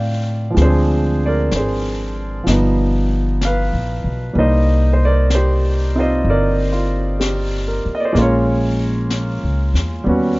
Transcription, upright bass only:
0.00 0.53 A2 medium
0.57 1.48 D2 medium
1.52 2.43 G#1 medium
2.47 3.69 G1 medium
3.73 4.02 A#1 soft
4.04 4.33 B1 medium
4.35 6.21 C2 medium
6.25 7.81 G1 medium
7.85 muted upright bass stroke soft
8.15 9.39 A#1 medium
9.43 9.73 C#2 soft
9.74 10.04 E2 medium
10.06 10.40 D#2 medium

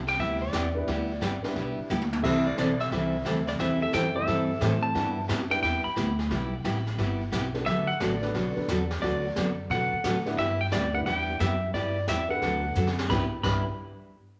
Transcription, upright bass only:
0.00 0.18 C2 medium
0.19 0.52 D2 medium
0.53 0.86 E2 medium
0.87 1.20 D2 medium
1.22 1.42 G1 medium
1.44 muted upright bass stroke soft
1.56 1.76 B1 medium
1.78 muted upright bass stroke soft
1.90 2.23 D2 medium
2.24 2.56 C2 medium
2.57 2.90 B1 medium
2.91 3.24 C2 medium
3.25 3.58 D2 medium
3.59 3.92 E2 medium
3.93 4.26 F#2 medium
4.27 4.60 G2 medium
4.61 4.94 A2 medium
4.95 5.28 G2 medium
5.29 5.62 F#2 loud
5.63 5.83 E2 medium
5.85 muted upright bass stroke soft
5.97 6.30 D2 loud
6.30 6.63 B1 medium
6.64 6.97 A1 medium
6.98 7.31 G1 medium
7.32 7.65 B1 medium
7.66 7.87 D2 medium
7.88 muted upright bass stroke soft
8.00 8.33 A1 medium
8.34 8.55 B1 medium
8.57 muted upright bass stroke soft
8.68 9.01 E2 medium
9.02 9.35 D2 medium
9.36 9.69 F#2 medium
9.70 9.91 B2 medium
9.92 muted upright bass stroke soft
10.04 10.37 A2 medium
10.38 10.71 G2 medium
10.72 11.05 D2 medium
11.06 11.39 E2 medium
11.40 11.73 F#2 medium
11.74 12.07 G2 medium
12.08 12.41 E2 medium
12.42 12.75 D2 medium
12.75 13.08 F#2 medium
13.09 13.22 G1 medium
13.43 13.64 G1 medium

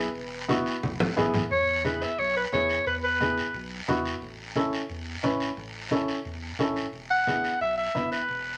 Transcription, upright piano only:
0.48 0.73 B3 medium
0.48 0.73 E4 medium
0.48 0.73 F#4 loud
1.17 1.40 B3 medium
1.17 1.41 E4 medium
1.17 1.41 G#4 loud
1.84 2.08 B3 medium
1.84 2.08 E4 medium
1.84 2.08 G#4 medium
2.53 2.76 B3 medium
2.53 2.77 E4 medium
2.53 2.77 G#4 medium
3.20 3.44 B3 medium
3.20 3.44 E4 medium
3.20 3.44 G#4 medium
3.88 4.12 B3 medium
3.88 4.12 E4 medium
3.88 4.12 F#4 medium
4.56 4.80 C#4 medium
4.56 4.80 E4 medium
4.56 4.80 A4 medium
5.23 5.47 C#4 medium
5.23 5.47 E4 medium
5.23 5.48 B4 medium
5.91 6.15 C#4 medium
5.91 6.15 E4 medium
5.91 6.15 A4 medium
6.59 6.83 C#4 medium
6.59 6.83 E4 medium
6.59 6.83 A4 medium
7.27 7.51 B3 medium
7.27 7.51 E4 medium
7.27 7.51 G#4 medium
7.95 8.18 B3 medium
7.95 8.19 E4 medium
7.95 8.19 B4 medium

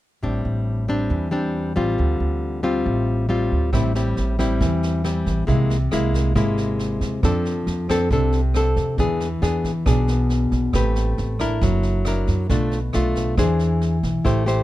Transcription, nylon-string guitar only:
0.23 1.08 A2 soft
0.23 0.85 G3 soft
0.23 0.85 C4 soft
0.23 0.86 D4 medium
0.88 1.29 G3 medium
0.88 1.29 C4 medium
0.88 1.29 D4 medium
1.11 1.96 E3 soft
1.31 1.72 G3 medium
1.31 1.73 C4 medium
1.31 1.73 D4 medium
1.76 2.60 G3 medium
1.76 2.60 C4 medium
1.76 2.61 F4 medium
1.98 2.84 D3 soft
2.63 3.26 G3 medium
2.63 3.26 C4 medium
2.63 3.26 F4 medium
2.84 3.70 A2 soft
3.29 3.70 G3 soft
3.29 3.70 C4 soft
3.29 3.70 F4 soft
3.73 4.59 A2 soft
3.73 3.92 G3 soft
3.73 3.92 C4 soft
3.73 3.92 E4 soft
3.96 4.36 G3 medium
3.96 4.36 C4 medium
3.96 4.36 E4 medium
4.39 5.01 G3 medium
4.39 5.01 C4 medium
4.39 5.02 E4 medium
4.61 5.46 E3 soft
5.05 5.47 G3 medium
5.05 5.47 C4 soft
5.05 5.47 E4 soft
5.47 6.33 C3 soft
5.47 5.76 G#3 soft
5.47 5.76 A#3 soft
5.47 5.76 E4 soft
5.92 6.32 G#3 soft
5.92 6.33 A#3 medium
5.92 6.33 E4 medium
6.36 7.21 C3 medium
6.36 7.20 G#3 soft
6.36 7.20 A#3 soft
6.36 7.20 E4 medium
7.24 8.09 F3 soft
7.24 7.86 C4 soft
7.24 7.86 D4 medium
7.24 7.87 A4 medium
7.90 8.08 C4 medium
7.90 8.08 D4 medium
7.90 8.09 A4 medium
8.12 8.97 C3 soft
8.12 8.40 C4 medium
8.12 8.40 D4 soft
8.12 8.40 A4 medium
8.55 8.97 C4 soft
8.55 8.98 D4 soft
8.55 8.98 A4 medium
8.99 9.85 E3 soft
8.99 9.27 B3 soft
8.99 9.28 D4 medium
8.99 9.28 G#4 medium
9.42 9.71 B3 medium
9.42 9.71 D4 soft
9.42 9.71 G#4 medium
9.86 10.72 B2 soft
9.86 10.71 B3 soft
9.86 10.71 D4 medium
9.86 10.71 G#4 soft
10.74 11.60 A3 soft
10.74 11.37 C4 soft
10.74 11.37 G4 soft
10.74 11.37 B4 soft
11.40 12.03 D4 medium
11.40 12.03 E4 medium
11.40 12.03 A#4 medium
11.63 12.48 F#3 soft
12.07 12.49 D4 soft
12.07 12.49 E4 soft
12.07 12.49 A#4 soft
12.50 13.36 B2 medium
12.50 12.78 A3 soft
12.50 12.79 D4 soft
12.50 12.79 F4 medium
12.94 13.34 A3 medium
12.94 13.35 D4 medium
12.94 13.35 F4 medium
13.38 14.23 E3 soft
13.38 13.97 D4 soft
13.38 13.97 G#4 medium
13.38 13.97 C5 soft
14.25 14.63 A3 medium
14.25 14.44 E4 medium
14.25 14.44 G4 soft
14.25 14.44 C5 medium
14.46 14.63 E4 medium
14.46 14.63 G4 medium
14.46 14.63 C5 medium

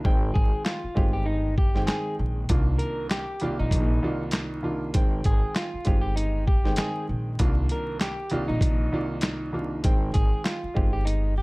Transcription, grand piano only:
0.04 0.76 D#3 loud
0.04 0.76 G#3 medium
0.04 0.77 C4 loud
0.04 0.77 G5 loud
0.94 1.53 D#3 medium
0.94 1.53 G#3 medium
0.94 1.53 C4 medium
0.94 1.53 G4 loud
1.75 2.44 D#3 medium
1.75 2.44 G#3 medium
1.75 2.45 C4 medium
1.75 2.45 G5 loud
2.49 3.21 C2 medium
2.49 3.21 D#3 medium
2.49 3.22 A#3 medium
2.49 3.22 D4 medium
2.49 3.22 F4 loud
3.41 3.98 C2 medium
3.41 3.99 D#3 medium
3.41 3.99 A#3 medium
3.41 3.99 F4 loud
3.41 3.99 D5 medium
4.02 4.60 C2 medium
4.02 4.60 D#3 medium
4.02 4.60 A#3 medium
4.02 4.61 F4 loud
4.02 4.60 D5 medium
4.62 4.92 C2 medium
4.62 4.92 D#3 medium
4.62 4.92 A#3 medium
4.62 4.92 D4 medium
4.62 4.93 F4 medium
4.94 5.66 D#3 loud
4.94 5.66 G#3 medium
4.94 5.67 C4 loud
4.94 5.67 G5 loud
5.84 6.43 D#3 medium
5.84 6.43 G#3 medium
5.84 6.43 C4 medium
5.84 6.43 G4 loud
6.64 7.34 D#3 loud
6.64 7.34 G#3 medium
6.64 7.34 C4 medium
6.64 7.35 G5 loud
7.39 8.11 C2 medium
7.39 8.11 D#3 medium
7.39 8.11 A#3 medium
7.39 8.12 D4 medium
7.39 8.12 F4 loud
8.31 8.88 C2 loud
8.31 8.88 D#3 medium
8.31 8.89 A#3 medium
8.31 8.89 F4 loud
8.31 8.89 D5 medium
8.92 9.49 C2 medium
8.92 9.50 D#3 medium
8.92 9.50 A#3 medium
8.92 9.50 F4 loud
8.92 9.50 D5 medium
9.52 9.82 C2 medium
9.52 9.82 D#3 medium
9.52 9.82 A#3 medium
9.52 9.82 D4 medium
9.52 9.82 F4 medium
9.84 10.56 D#3 loud
9.84 10.56 G#3 medium
9.84 10.56 C4 medium
9.84 10.57 G5 loud
10.74 11.32 D#3 medium
10.74 11.33 G#3 medium
10.74 11.33 C4 medium
10.74 11.33 G4 loud

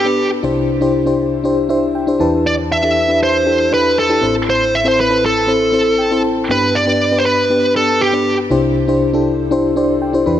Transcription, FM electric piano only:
0.00 0.40 G2 medium
0.00 0.05 B3 medium
0.00 0.05 D4 medium
0.00 0.06 G4 medium
0.00 0.06 B4 medium
0.05 0.31 B3 medium
0.05 0.31 D4 medium
0.05 0.31 G4 medium
0.05 0.31 B4 medium
0.43 2.16 C2 medium
0.43 2.16 C3 medium
0.43 0.68 D4 medium
0.43 0.69 E4 medium
0.43 0.69 G4 medium
0.43 0.69 C5 medium
0.81 0.98 D4 medium
0.81 0.98 E4 medium
0.81 0.98 G4 medium
0.81 0.99 C5 medium
1.06 1.31 D4 medium
1.06 1.32 E4 medium
1.06 1.32 G4 medium
1.06 1.32 C5 medium
1.44 1.61 D4 medium
1.44 1.61 E4 medium
1.44 1.61 G4 medium
1.44 1.62 C5 loud
1.69 1.94 D4 medium
1.69 1.95 E4 medium
1.69 1.95 G4 medium
1.69 1.95 C5 loud
1.69 1.93 E5 medium
1.95 2.19 G5 medium
2.07 2.18 D4 medium
2.07 2.19 E4 medium
2.07 2.19 G4 medium
2.07 2.21 C5 medium
2.20 4.18 E2 medium
2.20 4.18 E3 medium
2.20 2.71 D4 medium
2.20 2.71 E4 medium
2.20 2.71 G4 medium
2.20 2.71 B4 loud
2.20 2.44 A5 medium
2.83 3.00 D4 medium
2.83 3.00 E4 medium
2.83 3.00 G4 medium
2.83 3.01 A4 medium
3.08 3.33 D4 medium
3.08 3.34 E4 medium
3.08 3.34 G4 medium
3.08 3.34 B4 medium
3.46 3.63 D4 medium
3.46 3.63 E4 medium
3.46 3.63 G4 medium
3.46 3.63 A4 medium
3.71 3.97 D4 medium
3.71 3.97 E4 medium
3.71 3.97 G4 medium
3.71 3.97 B4 medium
4.09 4.22 D4 medium
4.09 4.21 E4 medium
4.09 4.22 G4 medium
4.09 4.21 A4 medium
4.21 6.20 A1 medium
4.21 6.20 A2 medium
4.21 4.72 C4 medium
4.21 4.73 E4 medium
4.21 4.73 A4 medium
4.21 4.73 C5 medium
4.84 5.01 C4 medium
4.84 5.02 E4 medium
4.84 5.02 A4 medium
4.84 5.02 C5 medium
5.10 5.35 C4 medium
5.10 5.35 E4 medium
5.10 5.35 A4 medium
5.10 5.36 C5 medium
5.47 5.64 C4 medium
5.47 5.65 E4 medium
5.47 5.65 A4 medium
5.47 5.65 C5 medium
5.72 5.98 C4 medium
5.72 5.98 E4 medium
5.72 5.98 A4 medium
5.72 5.99 C5 medium
5.98 6.22 G5 medium
6.11 6.36 C4 medium
6.11 6.36 E4 medium
6.11 6.36 A4 medium
6.11 6.37 C5 medium
6.24 6.47 A5 medium
6.49 8.47 G2 medium
6.49 6.74 B3 medium
6.49 6.74 D4 medium
6.49 6.74 G4 medium
6.49 6.75 B4 medium
6.86 7.03 B3 medium
6.86 7.03 D4 medium
6.86 7.04 G4 medium
6.86 7.04 B4 medium
7.12 7.37 B3 medium
7.12 7.37 D4 medium
7.12 7.37 G4 medium
7.12 7.37 B4 medium
7.50 7.67 B3 medium
7.50 7.67 D4 medium
7.50 7.67 G4 medium
7.50 7.67 B4 medium
7.75 8.00 B3 medium
7.75 8.00 D4 medium
7.75 8.00 G4 medium
7.75 8.01 B4 medium
8.13 8.38 B3 medium
8.13 8.38 D4 medium
8.13 8.38 G4 medium
8.13 8.38 B4 medium
8.50 10.23 C2 medium
8.50 10.23 C3 medium
8.50 8.75 D4 medium
8.50 8.76 E4 medium
8.50 8.76 G4 medium
8.50 8.76 C5 medium
8.88 9.05 D4 medium
8.88 9.05 E4 medium
8.88 9.05 G4 medium
8.88 9.05 C5 medium
9.13 9.39 D4 medium
9.13 9.39 E4 medium
9.13 9.39 G4 medium
9.13 9.39 A4 medium
9.51 9.68 D4 medium
9.51 9.68 E4 medium
9.51 9.68 G4 medium
9.51 9.69 C5 loud
9.76 10.01 D4 medium
9.76 10.02 E4 medium
9.76 10.02 G4 medium
9.76 10.02 C5 loud
9.76 10.00 D5 medium
10.02 10.25 G5 medium
10.13 10.25 D4 medium
10.13 10.25 E4 medium
10.13 10.26 G4 medium
10.13 10.27 C5 loud
10.26 10.40 E2 medium
10.26 10.40 E3 medium
10.26 10.40 D4 medium
10.26 10.40 E4 medium
10.26 10.40 G4 medium
10.26 10.40 B4 medium
10.26 10.40 B5 medium

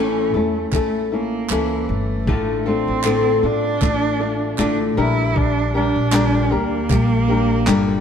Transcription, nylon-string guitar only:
0.00 0.34 A2 medium
0.00 0.34 E3 medium
0.00 0.35 A3 medium
0.00 0.35 C#4 medium
0.00 0.34 E4 medium
0.00 0.33 A4 medium
0.34 0.72 A3 soft
0.34 0.72 C#4 soft
0.34 0.73 E4 soft
0.34 0.73 A4 soft
0.73 1.11 A3 medium
0.73 1.12 C#4 medium
0.73 1.11 E4 medium
0.73 1.11 A4 medium
1.12 1.50 C#4 soft
1.12 1.51 E4 soft
1.12 1.50 A4 soft
1.50 2.27 E3 medium
1.50 2.28 C#4 medium
1.50 2.28 E4 medium
1.50 2.29 A4 medium
2.27 2.66 A2 medium
2.27 2.66 D3 medium
2.27 2.66 A3 medium
2.27 2.66 D4 medium
2.27 2.66 F4 medium
2.27 2.65 A4 medium
2.66 3.04 A3 soft
2.66 3.04 D4 soft
2.66 3.04 F4 soft
2.66 3.04 A4 medium
3.04 3.43 A2 medium
3.04 3.43 D3 medium
3.04 3.43 A3 medium
3.04 3.44 D4 medium
3.04 3.43 F4 medium
3.04 3.42 A4 medium
3.43 3.80 A3 soft
3.43 3.81 D4 soft
3.43 3.82 F4 soft
3.43 3.82 A4 medium
3.81 4.20 A3 medium
3.81 4.20 D4 medium
3.81 4.19 F4 medium
3.81 4.18 A4 medium
4.20 4.57 A3 soft
4.20 4.58 D4 soft
4.20 4.58 F4 soft
4.20 4.58 A4 soft
4.58 4.97 A2 medium
4.58 4.97 D3 medium
4.58 4.97 A3 medium
4.58 4.97 D4 medium
4.58 4.97 F4 medium
4.58 4.97 A4 medium
4.97 5.75 A#2 medium
4.97 5.75 D3 medium
4.97 5.76 G3 medium
4.97 5.74 D4 medium
4.97 5.75 G4 medium
4.97 5.73 A#4 medium
5.74 6.12 G3 soft
5.74 6.12 D4 soft
5.74 6.12 G4 medium
5.74 6.12 A#4 medium
6.12 6.51 A#2 medium
6.12 6.51 D3 medium
6.12 6.52 G3 medium
6.12 6.51 D4 medium
6.12 6.50 G4 medium
6.12 6.50 A#4 medium
6.51 6.88 G3 soft
6.51 6.89 D4 soft
6.51 6.90 G4 medium
6.51 6.90 A#4 medium
6.89 7.28 G3 medium
6.89 7.29 D4 medium
6.89 7.28 G4 medium
6.89 7.27 A#4 medium
7.28 7.66 G3 soft
7.28 7.66 D4 soft
7.28 7.67 G4 soft
7.28 7.67 A#4 medium
7.66 8.00 A#2 medium
7.66 8.00 D3 medium
7.66 8.00 G3 medium
7.66 8.00 D4 medium
7.66 8.00 G4 medium
7.66 8.00 A#4 medium

